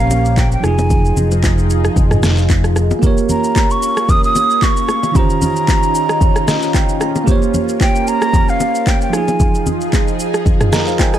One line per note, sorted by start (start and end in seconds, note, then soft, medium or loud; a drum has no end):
0.00 0.54 A#1 loud
0.00 0.58 A#3 medium
0.00 0.62 A#3 medium
0.00 0.62 C#4 medium
0.00 0.60 G4 medium
0.00 0.61 C5 medium
0.00 0.62 C#5 medium
0.00 0.40 F5 loud
0.11 low bongo medium
0.11 shaker loud
0.25 shaker medium
0.37 0.52 G5 medium
0.37 kick medium
0.37 clap medium
0.37 high bongo medium
0.37 shaker medium
0.52 0.66 G5 medium
0.52 shaker medium
0.60 1.11 F1 loud
0.60 2.70 F3 medium
0.60 3.00 F3 medium
0.60 2.72 D#4 medium
0.60 3.00 D#4 medium
0.60 11.19 F4 medium
0.60 3.00 G#4 medium
0.60 cross-stick medium
0.60 high bongo medium
0.60 shaker medium
0.65 2.73 F4 medium
0.65 2.74 G#4 medium
0.65 1.17 G#5 medium
0.78 low bongo medium
0.78 shaker soft
0.90 kick loud
0.90 low conga medium
0.90 shaker medium
1.05 shaker medium
1.17 1.87 F1 medium
1.17 low conga medium
1.17 shaker medium
1.31 high bongo soft
1.31 shaker medium
1.44 kick medium
1.44 clap medium
1.44 high bongo medium
1.44 shaker medium
1.58 shaker medium
1.70 shaker medium
1.85 cross-stick medium
1.85 shaker medium
1.96 2.90 F1 medium
1.96 kick loud
1.96 low conga medium
1.96 shaker medium
2.11 cross-stick medium
2.11 mid tom medium
2.11 shaker medium
2.23 cross-stick loud
2.23 snare medium
2.23 low bongo medium
2.23 shaker medium
2.38 shaker medium
2.50 kick medium
2.50 clap medium
2.50 high bongo medium
2.50 shaker medium
2.64 cross-stick medium
2.64 shaker medium
2.76 cross-stick medium
2.76 high bongo medium
2.76 shaker medium
2.91 low bongo medium
2.91 shaker soft
2.99 5.09 A#3 medium
2.99 5.13 A#3 medium
2.99 9.09 C#4 medium
2.99 5.11 G4 medium
2.99 kick loud
2.99 low conga medium
2.99 shaker medium
3.04 5.12 A#4 medium
3.04 5.13 C#5 medium
3.18 shaker medium
3.29 3.73 A#5 loud
3.29 low conga medium
3.29 shaker medium
3.44 shaker medium
3.56 kick medium
3.56 clap medium
3.56 high bongo medium
3.56 shaker medium
3.71 4.12 C#6 loud
3.71 shaker medium
3.83 shaker medium
3.97 cross-stick loud
3.97 shaker medium
4.09 4.24 D#6 loud
4.09 kick loud
4.09 low conga medium
4.09 shaker medium
4.24 4.65 D#6 loud
4.24 shaker medium
4.35 low bongo medium
4.35 shaker loud
4.50 shaker medium
4.62 5.18 C#6 loud
4.62 kick medium
4.62 clap medium
4.62 high bongo medium
4.62 shaker medium
4.77 shaker medium
4.89 cross-stick medium
4.89 high bongo medium
4.89 shaker medium
5.03 low bongo medium
5.03 shaker medium
5.11 7.22 D#3 medium
5.11 7.23 C#4 medium
5.11 7.26 D#4 medium
5.11 7.24 F4 medium
5.11 kick loud
5.11 low conga medium
5.11 shaker medium
5.16 7.25 G4 medium
5.16 7.26 C5 medium
5.16 7.02 A#5 loud
5.30 shaker medium
5.42 low conga medium
5.42 shaker medium
5.56 shaker medium
5.68 kick medium
5.68 clap medium
5.68 high bongo medium
5.68 shaker medium
5.83 shaker medium
5.95 shaker medium
6.09 cross-stick loud
6.09 shaker medium
6.21 kick loud
6.21 low conga medium
6.21 shaker medium
6.36 cross-stick medium
6.36 shaker medium
6.48 6.73 D#5 medium
6.48 cross-stick loud
6.48 snare medium
6.48 low bongo medium
6.48 shaker loud
6.62 shaker medium
6.74 6.99 G5 medium
6.74 kick medium
6.74 clap medium
6.74 high bongo medium
6.74 shaker medium
6.89 shaker medium
7.01 7.26 A#5 medium
7.01 cross-stick medium
7.01 high bongo medium
7.01 shaker medium
7.16 low bongo medium
7.16 shaker medium
7.24 9.08 A#3 medium
7.24 9.12 A#3 medium
7.24 9.09 G4 medium
7.24 kick loud
7.24 low conga medium
7.24 shaker medium
7.29 9.10 C5 medium
7.29 9.12 C#5 medium
7.42 shaker medium
7.54 low conga medium
7.54 shaker medium
7.69 shaker medium
7.81 8.10 G5 loud
7.81 kick medium
7.81 clap medium
7.81 high bongo medium
7.81 shaker medium
7.95 shaker medium
8.07 8.51 A#5 loud
8.07 shaker medium
8.22 cross-stick loud
8.22 shaker medium
8.34 kick loud
8.34 low conga medium
8.34 shaker medium
8.48 8.89 F5 loud
8.48 shaker medium
8.60 low bongo medium
8.60 shaker loud
8.75 shaker medium
8.87 9.02 G5 medium
8.87 kick medium
8.87 clap medium
8.87 high bongo medium
8.87 shaker medium
9.01 9.16 G5 medium
9.01 shaker medium
9.10 11.19 F3 medium
9.10 11.19 D#4 medium
9.10 11.19 G#4 medium
9.10 cross-stick medium
9.10 high bongo medium
9.10 shaker medium
9.14 11.19 F4 medium
9.14 11.19 G#4 medium
9.14 9.67 G#5 medium
9.28 low bongo medium
9.28 shaker soft
9.40 kick loud
9.40 low conga medium
9.40 shaker medium
9.55 shaker medium
9.66 low conga medium
9.66 shaker medium
9.81 shaker medium
9.93 kick loud
9.93 clap medium
9.93 high bongo medium
9.93 shaker medium
10.08 shaker medium
10.20 shaker medium
10.34 cross-stick medium
10.34 shaker medium
10.46 kick loud
10.46 low conga medium
10.46 shaker medium
10.61 cross-stick loud
10.61 mid tom medium
10.61 shaker medium
10.73 10.87 A#4 medium
10.73 10.87 D#5 medium
10.73 10.97 A#5 medium
10.73 cross-stick medium
10.73 snare medium
10.73 low bongo medium
10.73 shaker loud
10.87 10.99 C5 medium
10.87 10.99 F5 medium
10.87 shaker medium
10.99 11.13 C5 medium
10.99 11.13 G5 medium
10.99 11.13 G#5 medium
10.99 kick medium
10.99 clap medium
10.99 high bongo medium
10.99 shaker medium
11.14 11.19 D#5 medium
11.14 11.19 G#5 medium
11.14 cross-stick medium
11.14 shaker medium